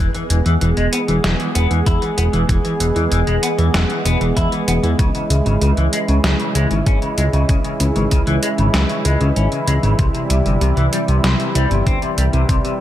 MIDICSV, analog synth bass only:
0, 0, Header, 1, 2, 480
1, 0, Start_track
1, 0, Key_signature, 4, "major"
1, 0, Tempo, 625000
1, 1912, Time_signature, 4, 2, 24, 8
1, 9834, End_track
2, 0, Start_track
2, 0, Title_t, "Analog synth bass"
2, 0, Program_c, 0, 38
2, 0, Note_on_c, 0, 28, 97
2, 79, Note_off_c, 0, 28, 0
2, 232, Note_on_c, 0, 28, 96
2, 319, Note_off_c, 0, 28, 0
2, 352, Note_on_c, 0, 40, 80
2, 439, Note_off_c, 0, 40, 0
2, 473, Note_on_c, 0, 28, 103
2, 559, Note_off_c, 0, 28, 0
2, 592, Note_on_c, 0, 28, 75
2, 679, Note_off_c, 0, 28, 0
2, 833, Note_on_c, 0, 28, 80
2, 919, Note_off_c, 0, 28, 0
2, 954, Note_on_c, 0, 28, 102
2, 1039, Note_off_c, 0, 28, 0
2, 1194, Note_on_c, 0, 28, 91
2, 1280, Note_off_c, 0, 28, 0
2, 1313, Note_on_c, 0, 40, 81
2, 1399, Note_off_c, 0, 40, 0
2, 1433, Note_on_c, 0, 40, 98
2, 1519, Note_off_c, 0, 40, 0
2, 1672, Note_on_c, 0, 28, 89
2, 1759, Note_off_c, 0, 28, 0
2, 1792, Note_on_c, 0, 28, 86
2, 1879, Note_off_c, 0, 28, 0
2, 1914, Note_on_c, 0, 28, 101
2, 1999, Note_off_c, 0, 28, 0
2, 2152, Note_on_c, 0, 28, 92
2, 2239, Note_off_c, 0, 28, 0
2, 2274, Note_on_c, 0, 40, 78
2, 2360, Note_off_c, 0, 40, 0
2, 2394, Note_on_c, 0, 28, 102
2, 2480, Note_off_c, 0, 28, 0
2, 2514, Note_on_c, 0, 28, 75
2, 2600, Note_off_c, 0, 28, 0
2, 2754, Note_on_c, 0, 40, 79
2, 2839, Note_off_c, 0, 40, 0
2, 2873, Note_on_c, 0, 28, 99
2, 2959, Note_off_c, 0, 28, 0
2, 3111, Note_on_c, 0, 28, 92
2, 3198, Note_off_c, 0, 28, 0
2, 3233, Note_on_c, 0, 28, 77
2, 3319, Note_off_c, 0, 28, 0
2, 3353, Note_on_c, 0, 40, 101
2, 3439, Note_off_c, 0, 40, 0
2, 3594, Note_on_c, 0, 28, 93
2, 3680, Note_off_c, 0, 28, 0
2, 3713, Note_on_c, 0, 40, 85
2, 3799, Note_off_c, 0, 40, 0
2, 3833, Note_on_c, 0, 37, 102
2, 3919, Note_off_c, 0, 37, 0
2, 4072, Note_on_c, 0, 37, 94
2, 4159, Note_off_c, 0, 37, 0
2, 4192, Note_on_c, 0, 32, 82
2, 4279, Note_off_c, 0, 32, 0
2, 4314, Note_on_c, 0, 37, 104
2, 4400, Note_off_c, 0, 37, 0
2, 4434, Note_on_c, 0, 37, 75
2, 4520, Note_off_c, 0, 37, 0
2, 4674, Note_on_c, 0, 37, 81
2, 4760, Note_off_c, 0, 37, 0
2, 4793, Note_on_c, 0, 37, 99
2, 4879, Note_off_c, 0, 37, 0
2, 5032, Note_on_c, 0, 37, 95
2, 5119, Note_off_c, 0, 37, 0
2, 5152, Note_on_c, 0, 32, 80
2, 5239, Note_off_c, 0, 32, 0
2, 5274, Note_on_c, 0, 32, 102
2, 5359, Note_off_c, 0, 32, 0
2, 5512, Note_on_c, 0, 37, 94
2, 5599, Note_off_c, 0, 37, 0
2, 5632, Note_on_c, 0, 37, 83
2, 5719, Note_off_c, 0, 37, 0
2, 5753, Note_on_c, 0, 37, 102
2, 5839, Note_off_c, 0, 37, 0
2, 5992, Note_on_c, 0, 37, 89
2, 6079, Note_off_c, 0, 37, 0
2, 6113, Note_on_c, 0, 32, 80
2, 6199, Note_off_c, 0, 32, 0
2, 6233, Note_on_c, 0, 37, 101
2, 6319, Note_off_c, 0, 37, 0
2, 6353, Note_on_c, 0, 37, 77
2, 6439, Note_off_c, 0, 37, 0
2, 6593, Note_on_c, 0, 32, 77
2, 6679, Note_off_c, 0, 32, 0
2, 6714, Note_on_c, 0, 37, 98
2, 6800, Note_off_c, 0, 37, 0
2, 6952, Note_on_c, 0, 37, 90
2, 7039, Note_off_c, 0, 37, 0
2, 7073, Note_on_c, 0, 37, 80
2, 7159, Note_off_c, 0, 37, 0
2, 7193, Note_on_c, 0, 32, 102
2, 7279, Note_off_c, 0, 32, 0
2, 7432, Note_on_c, 0, 37, 93
2, 7519, Note_off_c, 0, 37, 0
2, 7551, Note_on_c, 0, 32, 85
2, 7638, Note_off_c, 0, 32, 0
2, 7673, Note_on_c, 0, 36, 100
2, 7759, Note_off_c, 0, 36, 0
2, 7913, Note_on_c, 0, 36, 96
2, 7999, Note_off_c, 0, 36, 0
2, 8032, Note_on_c, 0, 31, 81
2, 8119, Note_off_c, 0, 31, 0
2, 8151, Note_on_c, 0, 36, 99
2, 8238, Note_off_c, 0, 36, 0
2, 8272, Note_on_c, 0, 36, 78
2, 8359, Note_off_c, 0, 36, 0
2, 8513, Note_on_c, 0, 36, 79
2, 8599, Note_off_c, 0, 36, 0
2, 8632, Note_on_c, 0, 36, 101
2, 8719, Note_off_c, 0, 36, 0
2, 8872, Note_on_c, 0, 36, 90
2, 8958, Note_off_c, 0, 36, 0
2, 8993, Note_on_c, 0, 31, 78
2, 9079, Note_off_c, 0, 31, 0
2, 9112, Note_on_c, 0, 31, 100
2, 9199, Note_off_c, 0, 31, 0
2, 9353, Note_on_c, 0, 36, 88
2, 9439, Note_off_c, 0, 36, 0
2, 9473, Note_on_c, 0, 36, 84
2, 9559, Note_off_c, 0, 36, 0
2, 9593, Note_on_c, 0, 36, 97
2, 9679, Note_off_c, 0, 36, 0
2, 9834, End_track
0, 0, End_of_file